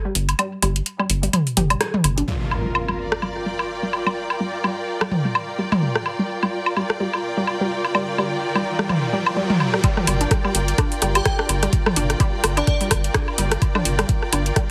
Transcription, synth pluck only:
0.05 G3
0.39 G3
0.62 G3
0.99 G3
1.23 G3
1.57 G4
1.70 G3
1.81 G3
2.18 D4
2.28 G3
2.65 G3
2.88 G3
3.22 G3
3.46 G3
3.83 G3
4.06 G3
4.40 G3
4.64 G3
5.01 G3
5.25 G3
5.59 G3
5.82 G3
6.19 G3
6.43 G3
6.77 G3
7.00 G3
7.37 G3
7.61 G3
7.95 G3
8.18 G3
8.55 G3
8.79 G3
9.13 G3
9.37 G3
9.74 G3
9.84 G3
10.21 D4
10.44 G3
10.78 D4
11.02 G3
11.39 D4
11.63 G3
11.97 D4
12.20 G3
12.57 D4
12.81 G3
13.15 D4
13.38 G3
13.75 D4
13.99 G3
14.33 D4
14.56 G3

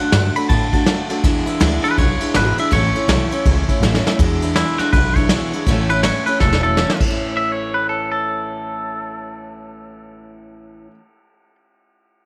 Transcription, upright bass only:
0.12 G2
0.35 muted upright bass stroke
0.50 A2
0.73 muted upright bass stroke
0.87 F#2
1.09 muted upright bass stroke
1.23 E2
1.47 muted upright bass stroke
1.60 D2
1.83 muted upright bass stroke
1.98 B1
2.20 muted upright bass stroke
2.34 G#1
2.57 muted upright bass stroke
2.72 A1
2.94 muted upright bass stroke
3.08 B1
3.30 muted upright bass stroke
3.45 C#2
3.68 muted upright bass stroke
3.80 A1
4.04 muted upright bass stroke
4.19 E2
4.78 muted upright bass stroke
4.93 B1
5.51 muted upright bass stroke
5.67 A1
6.26 muted upright bass stroke
6.40 E1
7.00 A1

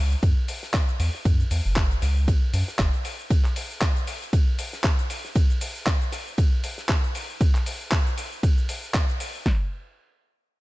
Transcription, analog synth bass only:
Already playing: C#2
0.23 F#2
1.00 E2
1.25 F#2
1.51 E2
1.65 F#1
2.02 C#2
2.53 F#2
2.79 F#1

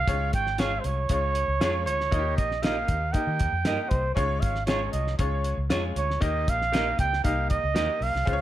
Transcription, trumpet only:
Already playing: F5
0.34 G5
0.60 F5
0.80 C5
0.85 C#5
1.86 C#5
2.36 D#5
2.63 F5
3.12 G5
3.89 C5
4.15 C#5
4.40 F5
4.67 C#5
4.92 D#5
5.18 C#5
5.97 C#5
6.22 D#5
6.49 F5
7.00 G5
7.24 F5
7.50 D#5
8.03 F5

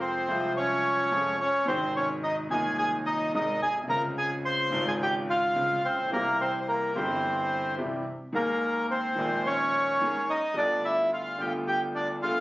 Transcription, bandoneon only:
0.00 C4 C5
0.57 C#4 C#5
1.41 C#4 C#5
1.68 C4 C5
1.96 C#4 C#5
2.23 D#4 D#5
2.51 G#4 G#5
2.79 G#4 G#5
3.06 D#4 D#5
3.35 D#4 D#5
3.62 G#4 G#5
3.90 A#4 A#5
4.18 G#4 G#5
4.45 C5 C6
4.88 G#4 G#5
5.03 G4 G5
5.30 F4 F5
5.85 C4 C5
6.12 A#3 A#4
6.41 C4 C5
6.61 C5
6.68 A#3 A#4
6.96 C4 C5
8.35 A#3 A#4
8.91 C4 C5
9.47 C#4 C#5
10.30 D#4 D#5
10.57 D4 D5
10.84 E4 E5
11.13 F4 F5
11.40 G4 G5
11.67 G4 G5
11.95 D4 D5
12.22 F4 F5

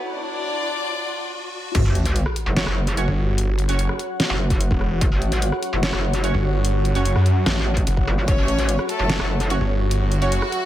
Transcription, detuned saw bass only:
3.07 G1
3.69 F#1
4.71 E1
6.34 G1
6.95 F#1
7.16 F#2
7.87 F#1
9.60 G1
10.22 F#1

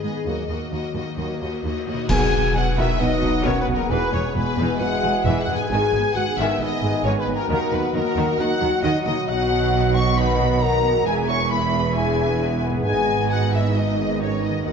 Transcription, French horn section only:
2.11 G#4
2.56 F#4
2.79 E4
3.01 D#4
3.47 C#4
3.61 B3
3.77 A#3
3.89 B3
4.12 C#4
4.35 B3
4.82 F#4
5.26 E4
5.42 F#4
5.56 G#4
5.69 G#4
6.16 F#4
6.37 E4
6.59 D#4
7.04 C#4
7.21 B3
7.35 A#3
7.49 A#3
7.73 B3
7.95 A#3
8.38 F#4
8.83 D#4
9.07 D#4
9.29 F#4
9.96 C#5
10.16 B4
10.62 A#4
11.07 G#4
11.29 C#5
11.52 B4
11.97 G#4
12.86 G#4
13.31 F#4
13.52 E4
13.77 D#4
14.22 C#4
14.43 D#4
14.67 F#4

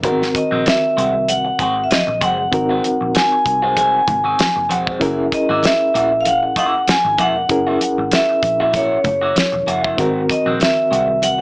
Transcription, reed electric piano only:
0.03 D#3 B3 F#4 A#4
0.09 C4
2.52 C4 D#4 F#4 A#4
5.00 C#4 E4 G#4 A#4
7.49 C#4 E4 G#4 A#4
9.97 D#3 C4 F#4 A#4

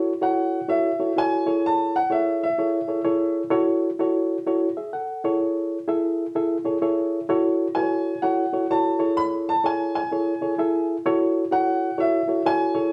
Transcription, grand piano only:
0.23 F#5
0.69 E5
1.18 G#5
1.66 A5
1.96 F#5
2.12 E5
2.43 E5
7.75 G#5
8.22 F#5
8.71 A5
9.17 B5
9.49 A5
9.66 G#5
9.95 G#5
11.52 F#5
12.00 E5
12.46 G#5

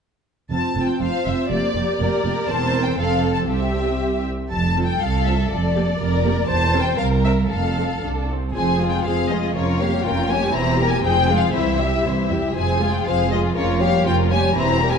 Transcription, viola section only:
0.52 C4 F4
0.77 C4 F4
1.02 C4 F4
1.27 C4 F4
1.52 A#3 G4
1.76 A#3 G4
2.00 A#3 G4
2.25 A#3 G4
2.50 C4 A#4
2.99 C4 A4
3.50 C4 G4
4.77 C4 F4
5.26 C4 F4
5.76 A#3 G4
6.24 A#3 G4
6.73 C4 A#4
7.25 C4 A#4
7.78 C4 A4
8.04 D4
8.30 C4
8.56 F3 C4
8.81 G#3
9.07 F3 C4
9.32 G#3
9.57 F3 C#4
9.81 G3 A#3
10.05 F3 C#4
10.30 G3 A#3
10.54 E3 C4
10.78 G3 A#3
11.03 F3 C4
11.29 G#3
11.53 E3 C4
11.79 G3 E4
12.04 E3 C4
12.30 G3 E4
12.56 F3 C4
12.81 G#3
13.07 F3 C4
13.31 G#3
13.57 F3 C#4
13.81 G3 A#3
14.07 F3 C#4
14.31 G3 A#3
14.56 E3 C4
14.80 G3 A#3

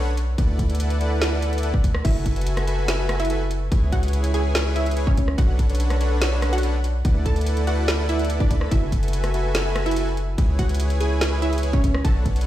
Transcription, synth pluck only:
2.05 E4 E5
3.20 E4 E5
3.92 F#4 F#5
4.34 G#4 G#5
4.76 E4 E5
5.07 C#4 C#5
5.38 F#4 F#5
6.53 F#4 F#5
7.26 A4 A5
7.67 F#4 F#5
8.09 E4 E5
8.40 D4 D5
8.71 E4 E5
9.86 E4 E5
10.59 F#4 F#5
11.01 G#4 G#5
11.42 E4 E5
11.73 C#4 C#5
12.05 A4 A5

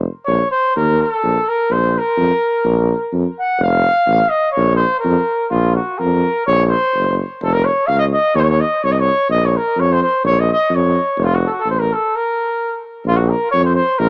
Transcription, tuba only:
0.27 A#1
0.76 D#2
1.23 A#1
1.70 A#1
2.17 F2
2.64 A#1
3.12 F2
3.59 F1
4.07 A1
4.57 A#1
5.05 F2
5.51 A#1
6.00 F2
6.47 A#1
6.95 F#1
7.42 F1
7.89 C#2
8.35 D#2
8.83 C2
9.29 A#1
9.76 F2
10.24 A#1
10.70 F2
11.18 F1
11.65 A1
13.05 A#1
13.54 F2
13.99 A#1

